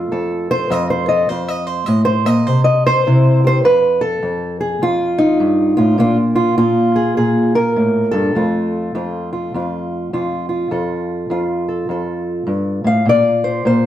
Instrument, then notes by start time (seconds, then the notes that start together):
steel-string acoustic guitar
Already playing: F2 A3 F4
0.12 F2 A4
0.51 C5
0.70 F2 D#5
0.90 C5
1.08 A4 D#5
1.29 F2 C5
1.48 D#5
1.67 C5
1.86 A2 D#5
2.05 C5
2.25 A#2 D#5
2.47 C3 C5
2.64 D#5
2.86 C5
3.07 C3 E4
3.44 G4 C5
3.64 F2 B4
4.01 A4
4.22 F2
4.61 G#4
4.82 F2 F4
5.18 D#4
5.40 G2
5.77 A2 F4
5.98 A#2 A#3 D4 F4
6.36 F4
6.58 A#2 F4
6.96 G#4
7.17 A#2 G#4
7.55 A#4
7.76 A2
8.11 G2 A4
8.35 F2 A3 F4
8.95 F2 F4
9.33 F4
9.54 F2 F4
10.13 F2 F4
10.49 F4
10.71 F2 A4
11.30 F2 F4
11.68 A4
11.89 F2 A4
12.47 G2
12.84 A2 F5
13.05 A#2 D5
13.44 C5
13.65 A#2 C5